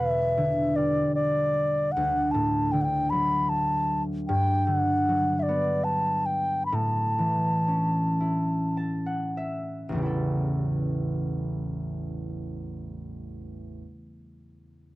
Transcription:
Already playing: E2 B2 G3 B4 E5
0.38 D3
0.76 G3 D5
1.15 D5
1.92 F#5
1.97 D2
2.31 A2 A5
2.72 D3 G5
2.81 F#5 G5
3.10 F#3 B5
3.49 A5
4.28 G2 G5
4.66 D3 F#5
5.09 F#3
5.39 D5 E5
5.49 B3
5.84 A5
6.26 G5
6.66 B5
6.72 A2 A5
7.18 E3
7.68 C#4
8.20 E4
8.77 A5
9.06 F#5
9.37 E5
9.89 A1 E2
9.95 C#3 G3
10.02 E4 A4

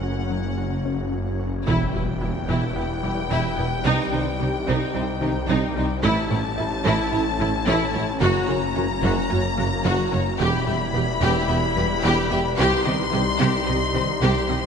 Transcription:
Already playing: F#1 F#2 A#3 C#4 F#4 A#4 C#5 F#5
0.03 F#4
0.30 F#3
0.58 F#4
0.85 C#4
1.12 F#3
1.40 C#4
1.67 E1 E2 E3 G3 E4 G4 B4 G5, impact
1.94 E1 E2 G3 E4 B4
2.21 E1 E2 B3 E4 G4
2.49 E1 E2 E3 E4
2.76 E1 E2 B3 E4 B4
3.03 E1 E2 G3 E4 G4
3.30 E1 E2 E3 E4
3.58 E1 E2 B3 E4 B4
3.85 C2 C3 D#4 C5
4.12 C2 C3 D#3 D#4 C5
4.39 C2 C3 G3 D#4 G4
4.67 C2 C3 D#4
4.94 C2 C3 G3 D#4 C5
5.21 C2 C3 D#3 D#4 G4
5.49 C2 C3 D#4
5.76 C2 C3 G3 D#4 C5
6.03 A1 A2 A3 C#4 E4 C#5 A5
6.30 A1 A2 C#4 E4 C#5
6.57 A1 A2 E4 A4
6.84 A1 A2 A3 E4
7.12 A1 A2 E4 C#5
7.39 A1 A2 C#4 E4 A4
7.66 A1 A2 A3 E4
7.94 A1 A2 E4 C#5
8.21 F#1 F#2 F#3 A#3 F#4 A#5
8.48 F#1 F#2 A#3 F#4 C#5
8.76 F#1 F#2 C#4 F#4 A#4
9.03 F#1 F#2 F#3 F#4
9.30 F#1 F#2 C#4 F#4 C#5
9.58 F#1 F#2 A#3 F#4 A#4
9.85 F#1 F#2 F#3 F#4
10.12 F#1 F#2 C#4 F#4 C#5
10.39 E1 E2 E3 G3 E4 G4 B4 B5
10.67 E1 E2 G3 G4 E5
10.94 E1 E2 B3 G4 B4
11.22 E1 E2 E3 G4
11.48 E1 E2 B3 G4 E5
11.76 E1 E2 G3 G4 B4
12.03 E1 E2 E3 G4
12.30 E1 E2 B3 G4 E5
12.58 C2 C3 D#4 G4 C5 C6
12.85 C2 C3 D#3 G4 D#5
13.12 C2 C3 G3 G4 C5
13.39 C2 C3 G4
13.66 C2 C3 G3 G4 D#5
13.94 C2 C3 D#3 G4 C5
14.21 C2 C3 G4
14.49 C2 C3 G3 G4 D#5

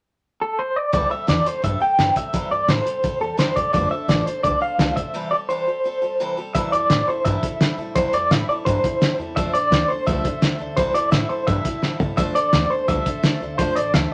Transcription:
0.42 A4
0.59 C5
0.76 D5
0.92 C2 C3 E3 G3 C4 G4 A4 D5, kick, closed hi-hat
1.10 G3 C4 G4 A4 E5
1.27 E2 C3 E3 G3 C4 G4 A4 D5, snare, closed hi-hat
1.44 G3 C4 G4 A4 C5, muted upright bass stroke, closed hi-hat
1.62 G2 G3 C4 G4 A4 E5, kick, closed hi-hat
1.80 G3 C4 G4 A4 G5, muted upright bass stroke
1.98 G2 C3 E3 G3 C4 G4 A4, snare, closed hi-hat
2.16 G3 C4 G4 A4 E5, kick, closed hi-hat
2.33 C2 C3 E3 G3 C4 G4 A4, kick, closed hi-hat
2.51 G2 G3 C4 G4 A4 D5
2.68 A2 C3 E3 G3 C4 G4 A4 C5, snare, closed hi-hat
2.85 G3 C4 G4 A4, closed hi-hat
3.03 A2 G3 C4 G4 A4, kick, closed hi-hat
3.20 E2 G3 C4 G4 A4
3.37 F2 C3 E3 G3 C4 G4 A4 C5, snare, closed hi-hat
3.55 A2 G3 C4 G4 A4 D5, kick, closed hi-hat
3.73 F1 F3 A3 D4 A4 C5 D5, kick, closed hi-hat
3.91 D4 A4 C5 E5, muted upright bass stroke
4.08 A1 F3 A3 D4 A4 C5 D5, snare, closed hi-hat
4.25 D4 A4 C5, muted upright bass stroke, closed hi-hat
4.43 C2 A3 D4 A4 C5 D5, kick, closed hi-hat
4.61 D4 A4 C5 F5, muted upright bass stroke
4.78 C2 F3 A3 D4 A4 C5, snare, closed hi-hat
4.96 D4 A4 C5 E5, kick, closed hi-hat
5.14 C3 E3 G3 C4 G4 A4
5.31 G3 C4 G4 A4 D5
5.49 C3 E3 G3 C4 G4 A4 C5
5.67 G3 C4 G4 A4
5.84 G3 C4 G4 A4
6.02 G3 C4 G4 A4
6.20 C3 E3 G3 C4 G4 A4
6.37 G3 C4 G4 A4
6.54 C2 C3 E3 G3 C4 E4 A4 E5, kick, closed hi-hat
6.72 F2 G3 C4 E4 A4 D5, closed hi-hat
6.90 A2 G3 C4 E4 A4, snare, closed hi-hat
7.07 G3 C4 E4 A4 C5, muted upright bass stroke
7.25 G2 C3 E3 G3 C4 E4 A4 E5, kick, closed hi-hat
7.43 G3 C4 E4 A4, kick, closed hi-hat
7.60 A2 G3 C4 E4 A4, snare, closed hi-hat
7.77 A2 C4 E4 A4
7.81 G3
7.95 C2 C3 E3 G3 C4 E4 A4 C5, kick, closed hi-hat
8.12 F2 G3 C4 E4 A4 D5, closed hi-hat
8.30 A2 G3 C4 E4 A4 E5, snare, closed hi-hat
8.48 G3 C4 E4 A4 D5, muted upright bass stroke
8.65 G2 C3 E3 G3 C4 E4 A4 C5, kick, closed hi-hat
8.84 G3 C4 E4 A4, kick, closed hi-hat
9.01 A2 G3 C4 E4 A4, snare, closed hi-hat
9.18 E2 G3 C4 E4 A4
9.36 F1 F3 A3 D4 A4 C5 E5, kick, closed hi-hat
9.53 A1 D4 A4 C5 D5, closed hi-hat
9.71 D2 A3 D4 A4 C5, snare, closed hi-hat
9.88 A4 C5, muted upright bass stroke
9.93 D4
10.06 C2 F3 A3 D4 A4 C5 E5, kick, closed hi-hat
10.24 D4 A4 C5, kick, closed hi-hat
10.42 D2 A3 D4 A4 C5, snare, closed hi-hat
10.59 D2 D4 A4 C5
10.77 C2 C3 E3 G3 C4 E4 A4 C5, kick, closed hi-hat
10.93 F2 G3 C4 E4 A4 D5, closed hi-hat
11.11 A2 G3 C4 E4 A4 E5, snare, closed hi-hat
11.29 G3 C4 E4 A4 C5, muted upright bass stroke
11.47 G2 C3 E3 G3 C4 E4 A4 E5, kick, closed hi-hat
11.65 G3 C4 E4 A4, kick, closed hi-hat
11.82 A2 G3 C4 E4 A4, snare
11.99 G2 G3 C4 E4 A4, floor tom
12.17 F1 F3 A3 D4 A4 C5 E5, kick, closed hi-hat
12.35 A1 D4 A4 C5 D5, closed hi-hat
12.53 D2 A3 D4 A4 C5, snare, closed hi-hat
12.70 D4 A4 C5, muted upright bass stroke
12.88 C2 F3 A3 D4 A4 C5 E5, kick, closed hi-hat
13.06 D4 A4 C5, kick, closed hi-hat
13.23 D2 A3 D4 A4 C5, snare, closed hi-hat
13.40 D2 D4 A4 C5
13.58 F1 F3 A3 D4 A4 C5, kick, closed hi-hat
13.76 A1 D4 A4 C5 D5, closed hi-hat
13.94 D2 A3 D4 A4 C5 E5, snare, closed hi-hat

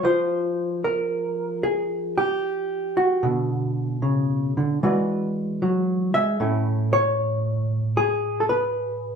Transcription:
0.03 F3 F4 C5
0.84 A#4
1.63 G#4
2.18 G4
2.97 F#4
3.23 B2 D3
4.02 C#3
4.57 D3
4.83 E3 G#3 F#4 B4 D5
5.62 F#3
6.14 G#3 E5
6.40 A2 A3 C#4 E4
6.93 C#5
7.97 G#4
8.40 A4
8.49 B4

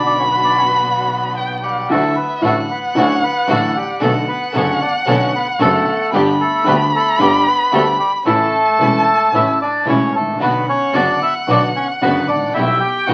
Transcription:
Already playing: B1 B2 D3 F#3 B3 D4 F#4 B5
0.06 D4 D5
0.19 C#4 C#5
0.30 B3 B4
0.43 D4 D5
0.57 C#4 C#5
0.69 B3 B4
1.38 G5
1.63 G3 G4 F#5
1.89 D2 D3 F#3 A3 D4 E4 F#4 A4 E5
2.16 B3 B4
2.41 A1 A2 D3 F#3 A3 D4 E4 F#4 A4 F#5
2.45 A3
2.71 B3 B4
2.95 D2 D3 F#3 A3 C#4 D4 E4 F#4 C#5
3.24 B3 B4
3.47 A1 A2 D3 F#3 A3 D4 E4 F#4 A4
3.52 A3
3.76 G3 G4
4.01 B1 B2 D3 A3 B3 D4 F#4 A4 F#5
4.28 B3 B4
4.54 F#1 F#2 D3 A3 B3 C#4 D4 F#4 A4 C#5
4.81 D4 D5
5.06 B1 B2 D3 A3 B3 C#4 D4 F#4 A4 C#5
5.36 B3 B4
5.60 F#1 F#2 D3 A3 B3 D4 F#4 A4
6.12 G1 G2 D3 G3 B3 D4 G4 B5
6.41 A3 A4
6.64 D2 D3 G3 B3 D4 G4 B4
6.68 B3
6.96 A3 A4
7.18 G1 G2 D3 G3 B3 D4 G4
7.47 B3 B4
7.72 D2 D3 G3 A3 B3 D4 G4 A4
7.99 G3 G4
8.25 A1 A2 C#3 E3 A3 C#4 E4 A4 A5
8.79 E1 E2 C#3 E3 A3 C#4 E4
9.32 A1 A2 C#3 E3 A3 C#4 E4 E5
9.62 D4 D5
9.86 E1 E2 C#3 E3 A3 C#4 E4 C#5
10.13 A1 A3 A4
10.20 G#1
10.27 A1
10.33 A#1
10.40 B1 B2 D3 F#3 B3 D4 F#4 B4 F#5
10.69 C#4 C#5
10.93 F#1 F#2 D3 F#3 B3 D4 F#4 D5
11.22 E4 E5
11.47 B1 B2 D3 F#3 B3 D4 F#4 D5
11.76 C#4 C#5
12.02 F#1 F#2 D3 F#3 B3 D4 F#4 B4
12.28 A1 D4 D5
12.35 G#1
12.42 A1
12.49 A#1
12.54 B1 B2 E3 G3 B3 E4 G4 E5 G5
12.80 G4 G5
13.06 B1 B2 E3 G3 B3 E4 F#4 G4 F#5

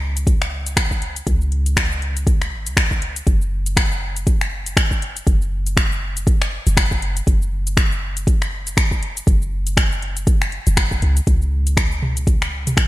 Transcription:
Already playing: C#2
0.17 closed hi-hat, shaker
0.27 kick, closed hi-hat, shaker
0.42 finger snap, shaker
0.66 closed hi-hat, shaker
0.77 finger snap, kick, closed hi-hat, shaker
0.91 kick, shaker
1.02 closed hi-hat
1.16 closed hi-hat, shaker
1.27 C#2, kick, closed hi-hat, shaker
1.41 shaker
1.52 closed hi-hat
1.66 closed hi-hat, shaker
1.77 finger snap, kick, closed hi-hat, shaker
1.92 shaker
2.02 closed hi-hat
2.17 closed hi-hat, shaker
2.27 kick, closed hi-hat, shaker
2.42 finger snap, shaker
2.52 G#1
2.66 C#2, closed hi-hat, shaker
2.77 finger snap, kick, closed hi-hat, shaker
2.91 kick, shaker
3.02 closed hi-hat
3.16 closed hi-hat, shaker
3.27 F#1, kick, closed hi-hat, shaker
3.41 shaker
3.66 closed hi-hat, shaker
3.77 finger snap, kick, closed hi-hat, shaker
3.92 shaker
4.16 closed hi-hat, shaker
4.27 kick, closed hi-hat, shaker
4.41 finger snap, shaker
4.66 closed hi-hat, shaker
4.77 finger snap, kick, closed hi-hat, shaker
4.91 kick, shaker
5.02 closed hi-hat
5.17 closed hi-hat, shaker
5.27 F#1, kick, closed hi-hat, shaker
5.42 shaker
5.67 closed hi-hat, shaker
5.77 finger snap, kick, closed hi-hat, shaker
5.92 shaker
6.17 closed hi-hat, shaker
6.27 kick, closed hi-hat, shaker
6.42 finger snap, shaker
6.67 F#1, closed hi-hat, shaker
6.77 finger snap, kick, closed hi-hat, shaker
6.91 kick, shaker
7.02 closed hi-hat
7.17 closed hi-hat, shaker
7.27 F#1, kick, closed hi-hat, shaker
7.42 shaker
7.67 closed hi-hat, shaker
7.77 finger snap, kick, closed hi-hat, shaker
7.92 shaker
8.17 closed hi-hat, shaker
8.27 kick, closed hi-hat, shaker
8.42 finger snap, shaker
8.67 closed hi-hat, shaker
8.77 finger snap, kick, closed hi-hat, shaker
8.91 kick, shaker
9.03 closed hi-hat
9.17 closed hi-hat, shaker
9.27 F#1, kick, closed hi-hat, shaker
9.42 shaker
9.67 closed hi-hat, shaker
9.77 finger snap, kick, closed hi-hat, shaker
9.92 shaker
10.02 closed hi-hat
10.17 closed hi-hat, shaker
10.27 kick, closed hi-hat, shaker
10.42 finger snap, shaker
10.52 closed hi-hat
10.67 F#1, closed hi-hat, shaker
10.77 finger snap, kick, closed hi-hat, shaker
10.91 kick, shaker
11.02 C#2, closed hi-hat
11.17 closed hi-hat, shaker
11.27 C#2, kick, closed hi-hat, shaker
11.42 shaker
11.67 closed hi-hat, shaker
11.77 finger snap, kick, closed hi-hat, shaker
11.92 shaker
12.02 mid tom
12.17 closed hi-hat, shaker
12.27 kick, closed hi-hat, shaker
12.42 finger snap, shaker
12.67 closed hi-hat, mid tom, shaker
12.77 finger snap, kick, closed hi-hat, shaker

